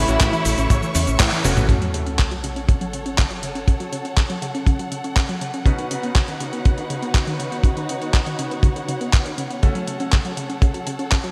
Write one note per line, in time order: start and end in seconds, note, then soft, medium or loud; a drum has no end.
0.00 1.66 A3 medium
0.00 1.16 E4 loud
0.00 1.67 C#5 medium
0.00 1.67 E5 medium
0.00 1.67 C#6 medium
0.08 0.18 A1 medium
0.08 1.17 A2 medium
0.08 1.17 E3 medium
0.08 1.17 A3 medium
0.08 1.17 C#4 medium
0.08 0.20 C#4 loud
0.08 1.17 F#4 medium
0.08 closed hi-hat medium
0.08 cabasa soft
0.21 0.30 A1 loud
0.21 0.28 C#3 loud
0.21 kick loud
0.21 clap loud
0.21 closed hi-hat medium
0.21 cabasa soft
0.33 0.41 E3 loud
0.33 closed hi-hat soft
0.33 cabasa soft
0.45 0.55 A1 loud
0.45 0.53 C#3 loud
0.45 open hi-hat loud
0.45 cabasa medium
0.58 0.67 A1 medium
0.58 0.69 C#4 loud
0.58 closed hi-hat medium
0.58 cabasa soft
0.70 0.80 A1 loud
0.70 0.78 C#3 loud
0.70 kick loud
0.70 closed hi-hat medium
0.70 cabasa soft
0.82 0.90 E3 loud
0.82 cabasa soft
0.95 1.05 E2 medium
0.95 1.02 C#3 loud
0.95 open hi-hat loud
0.95 cabasa medium
1.07 1.17 A1 medium
1.07 1.19 C#4 loud
1.07 closed hi-hat medium
1.07 cabasa soft
1.20 1.29 A1 loud
1.20 1.42 A2 medium
1.20 1.27 C#3 loud
1.20 1.42 E3 medium
1.20 1.42 A3 medium
1.20 1.42 C#4 medium
1.20 1.42 E4 loud
1.20 kick loud
1.20 clap loud
1.20 closed hi-hat medium
1.20 cabasa soft
1.32 1.40 E3 loud
1.32 cabasa soft
1.44 1.54 E1 loud
1.44 1.52 C#3 loud
1.44 1.66 E3 loud
1.44 1.66 A3 medium
1.44 1.66 C#4 medium
1.44 1.66 F#4 loud
1.44 open hi-hat loud
1.44 high tom medium
1.44 cabasa medium
1.57 1.67 A1 medium
1.57 1.68 C#4 loud
1.57 closed hi-hat medium
1.57 mid tom medium
1.57 cabasa soft
1.69 1.77 C#3 loud
1.69 5.63 A3 medium
1.69 5.63 C#4 medium
1.69 5.63 F#4 medium
1.69 5.62 A4 medium
1.69 5.63 A4 medium
1.69 5.62 C#5 medium
1.69 11.31 F#5 medium
1.69 kick loud
1.69 closed hi-hat medium
1.69 sub drop medium
1.82 1.89 F#3 loud
1.82 closed hi-hat soft
1.94 2.02 C#3 loud
1.94 closed hi-hat medium
2.06 2.18 C#4 loud
2.06 closed hi-hat soft
2.19 2.26 C#3 medium
2.19 kick medium
2.19 clap loud
2.19 closed hi-hat medium
2.31 2.39 F#3 medium
2.31 closed hi-hat soft
2.44 2.51 C#3 medium
2.44 closed hi-hat medium
2.56 2.67 C#4 medium
2.56 closed hi-hat soft
2.69 2.76 C#3 loud
2.69 kick loud
2.69 closed hi-hat medium
2.81 2.88 F#3 medium
2.81 closed hi-hat soft
2.93 3.01 C#3 loud
2.93 closed hi-hat medium
3.06 3.17 C#4 medium
3.06 closed hi-hat soft
3.18 3.26 C#3 medium
3.18 kick loud
3.18 clap loud
3.18 closed hi-hat medium
3.30 3.38 F#3 loud
3.30 closed hi-hat soft
3.43 3.50 C#3 medium
3.43 closed hi-hat medium
3.55 3.67 C#4 loud
3.55 closed hi-hat soft
3.68 3.75 C#3 medium
3.68 kick loud
3.68 closed hi-hat medium
3.80 3.88 F#3 loud
3.80 closed hi-hat soft
3.92 4.00 C#3 loud
3.92 closed hi-hat medium
4.05 4.16 C#4 medium
4.05 closed hi-hat soft
4.17 4.25 C#3 loud
4.17 kick loud
4.17 clap loud
4.17 closed hi-hat medium
4.30 4.37 F#3 loud
4.30 closed hi-hat soft
4.42 4.50 C#3 loud
4.42 closed hi-hat medium
4.55 4.66 C#4 loud
4.55 closed hi-hat soft
4.67 4.74 C#3 loud
4.67 kick loud
4.67 closed hi-hat medium
4.79 4.87 F#3 medium
4.79 closed hi-hat soft
4.92 4.99 C#3 loud
4.92 closed hi-hat medium
5.04 5.15 C#4 medium
5.04 closed hi-hat soft
5.16 5.24 C#3 medium
5.16 kick loud
5.16 clap loud
5.16 closed hi-hat medium
5.29 5.36 F#3 medium
5.29 closed hi-hat soft
5.41 5.49 C#3 medium
5.41 closed hi-hat medium
5.54 5.65 C#4 medium
5.54 closed hi-hat soft
5.66 9.60 B2 medium
5.66 5.74 C#3 loud
5.66 9.60 C#4 medium
5.66 9.60 D#4 medium
5.66 9.59 D#4 medium
5.66 9.60 F#4 medium
5.66 9.59 F#4 medium
5.66 9.60 B4 medium
5.66 9.59 B4 medium
5.66 11.31 C#5 medium
5.66 kick loud
5.66 closed hi-hat medium
5.79 5.86 D#3 loud
5.79 closed hi-hat soft
5.91 5.98 C#3 loud
5.91 closed hi-hat medium
6.03 6.15 B3 medium
6.03 closed hi-hat soft
6.15 6.23 C#3 medium
6.15 kick loud
6.15 clap medium
6.15 closed hi-hat medium
6.28 6.36 D#3 loud
6.28 closed hi-hat soft
6.40 6.48 C#3 loud
6.40 closed hi-hat medium
6.53 6.64 B3 loud
6.53 closed hi-hat soft
6.65 6.73 C#3 loud
6.65 kick loud
6.65 closed hi-hat medium
6.78 6.85 D#3 loud
6.78 closed hi-hat soft
6.90 6.98 C#3 loud
6.90 closed hi-hat medium
7.02 7.14 B3 loud
7.02 closed hi-hat soft
7.14 7.22 C#3 medium
7.14 kick loud
7.14 clap loud
7.14 closed hi-hat medium
7.27 7.35 D#3 loud
7.27 closed hi-hat soft
7.40 7.47 C#3 medium
7.40 closed hi-hat medium
7.52 7.63 B3 loud
7.52 closed hi-hat soft
7.64 7.72 C#3 loud
7.64 kick loud
7.64 closed hi-hat medium
7.77 7.84 D#3 loud
7.77 closed hi-hat soft
7.89 7.97 C#3 loud
7.89 closed hi-hat medium
8.02 8.13 B3 medium
8.02 closed hi-hat soft
8.14 8.22 C#3 medium
8.14 kick medium
8.14 clap medium
8.14 closed hi-hat medium
8.26 8.34 D#3 medium
8.26 closed hi-hat soft
8.39 8.46 C#3 loud
8.39 closed hi-hat medium
8.51 8.62 B3 medium
8.51 closed hi-hat soft
8.63 8.71 C#3 loud
8.63 kick loud
8.63 closed hi-hat medium
8.76 8.84 D#3 medium
8.76 closed hi-hat soft
8.88 8.96 C#3 loud
8.88 closed hi-hat medium
9.01 9.12 B3 medium
9.01 closed hi-hat soft
9.13 9.21 C#3 medium
9.13 kick loud
9.13 clap medium
9.13 closed hi-hat medium
9.26 9.33 D#3 loud
9.26 closed hi-hat soft
9.38 9.45 C#3 loud
9.38 closed hi-hat medium
9.50 9.62 B3 loud
9.50 closed hi-hat soft
9.63 9.70 C#3 loud
9.63 11.31 A3 medium
9.63 11.31 C#4 medium
9.63 11.31 F#4 medium
9.63 11.31 A4 medium
9.63 kick loud
9.63 closed hi-hat medium
9.75 9.83 F#3 loud
9.75 closed hi-hat soft
9.88 9.95 C#3 medium
9.88 closed hi-hat medium
10.00 10.11 C#4 loud
10.00 closed hi-hat soft
10.12 10.20 C#3 medium
10.12 kick loud
10.12 clap medium
10.12 closed hi-hat medium
10.25 10.32 F#3 loud
10.25 closed hi-hat soft
10.37 10.45 C#3 loud
10.37 closed hi-hat medium
10.50 10.61 C#4 medium
10.50 closed hi-hat soft
10.62 10.69 C#3 loud
10.62 kick loud
10.62 closed hi-hat medium
10.74 10.82 F#3 medium
10.74 closed hi-hat soft
10.87 10.94 C#3 loud
10.87 closed hi-hat medium
10.99 11.10 C#4 loud
10.99 closed hi-hat soft
11.12 11.19 C#3 medium
11.12 kick loud
11.12 clap medium
11.12 closed hi-hat medium
11.24 11.31 F#3 loud
11.24 closed hi-hat soft